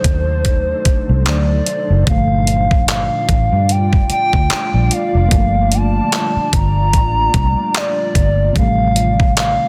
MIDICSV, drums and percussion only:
0, 0, Header, 1, 2, 480
1, 0, Start_track
1, 0, Key_signature, -2, "minor"
1, 0, Tempo, 810811
1, 1226, Time_signature, 4, 2, 24, 8
1, 5732, End_track
2, 0, Start_track
2, 0, Title_t, "Drums"
2, 25, Note_on_c, 9, 36, 89
2, 26, Note_on_c, 9, 42, 80
2, 85, Note_off_c, 9, 36, 0
2, 85, Note_off_c, 9, 42, 0
2, 265, Note_on_c, 9, 36, 75
2, 265, Note_on_c, 9, 42, 63
2, 324, Note_off_c, 9, 42, 0
2, 325, Note_off_c, 9, 36, 0
2, 505, Note_on_c, 9, 42, 61
2, 506, Note_on_c, 9, 36, 79
2, 564, Note_off_c, 9, 42, 0
2, 565, Note_off_c, 9, 36, 0
2, 744, Note_on_c, 9, 42, 70
2, 748, Note_on_c, 9, 39, 113
2, 804, Note_off_c, 9, 42, 0
2, 808, Note_off_c, 9, 39, 0
2, 986, Note_on_c, 9, 42, 64
2, 1045, Note_off_c, 9, 42, 0
2, 1225, Note_on_c, 9, 36, 118
2, 1225, Note_on_c, 9, 42, 69
2, 1284, Note_off_c, 9, 36, 0
2, 1284, Note_off_c, 9, 42, 0
2, 1464, Note_on_c, 9, 42, 67
2, 1523, Note_off_c, 9, 42, 0
2, 1604, Note_on_c, 9, 36, 88
2, 1664, Note_off_c, 9, 36, 0
2, 1706, Note_on_c, 9, 42, 62
2, 1711, Note_on_c, 9, 39, 117
2, 1765, Note_off_c, 9, 42, 0
2, 1770, Note_off_c, 9, 39, 0
2, 1945, Note_on_c, 9, 36, 89
2, 1947, Note_on_c, 9, 42, 80
2, 2005, Note_off_c, 9, 36, 0
2, 2006, Note_off_c, 9, 42, 0
2, 2186, Note_on_c, 9, 42, 59
2, 2245, Note_off_c, 9, 42, 0
2, 2325, Note_on_c, 9, 36, 90
2, 2384, Note_off_c, 9, 36, 0
2, 2425, Note_on_c, 9, 42, 57
2, 2484, Note_off_c, 9, 42, 0
2, 2564, Note_on_c, 9, 36, 81
2, 2623, Note_off_c, 9, 36, 0
2, 2664, Note_on_c, 9, 42, 70
2, 2668, Note_on_c, 9, 39, 115
2, 2723, Note_off_c, 9, 42, 0
2, 2727, Note_off_c, 9, 39, 0
2, 2906, Note_on_c, 9, 42, 67
2, 2966, Note_off_c, 9, 42, 0
2, 3144, Note_on_c, 9, 42, 71
2, 3145, Note_on_c, 9, 36, 121
2, 3204, Note_off_c, 9, 36, 0
2, 3204, Note_off_c, 9, 42, 0
2, 3384, Note_on_c, 9, 42, 70
2, 3443, Note_off_c, 9, 42, 0
2, 3625, Note_on_c, 9, 42, 65
2, 3630, Note_on_c, 9, 39, 112
2, 3684, Note_off_c, 9, 42, 0
2, 3689, Note_off_c, 9, 39, 0
2, 3865, Note_on_c, 9, 36, 90
2, 3866, Note_on_c, 9, 42, 80
2, 3924, Note_off_c, 9, 36, 0
2, 3925, Note_off_c, 9, 42, 0
2, 4105, Note_on_c, 9, 36, 82
2, 4105, Note_on_c, 9, 42, 62
2, 4164, Note_off_c, 9, 36, 0
2, 4164, Note_off_c, 9, 42, 0
2, 4345, Note_on_c, 9, 36, 81
2, 4345, Note_on_c, 9, 42, 60
2, 4404, Note_off_c, 9, 36, 0
2, 4404, Note_off_c, 9, 42, 0
2, 4585, Note_on_c, 9, 42, 74
2, 4589, Note_on_c, 9, 39, 112
2, 4644, Note_off_c, 9, 42, 0
2, 4648, Note_off_c, 9, 39, 0
2, 4825, Note_on_c, 9, 36, 89
2, 4827, Note_on_c, 9, 42, 68
2, 4885, Note_off_c, 9, 36, 0
2, 4886, Note_off_c, 9, 42, 0
2, 5065, Note_on_c, 9, 36, 122
2, 5066, Note_on_c, 9, 42, 73
2, 5125, Note_off_c, 9, 36, 0
2, 5125, Note_off_c, 9, 42, 0
2, 5304, Note_on_c, 9, 42, 70
2, 5363, Note_off_c, 9, 42, 0
2, 5445, Note_on_c, 9, 36, 92
2, 5504, Note_off_c, 9, 36, 0
2, 5546, Note_on_c, 9, 42, 64
2, 5551, Note_on_c, 9, 39, 118
2, 5605, Note_off_c, 9, 42, 0
2, 5610, Note_off_c, 9, 39, 0
2, 5732, End_track
0, 0, End_of_file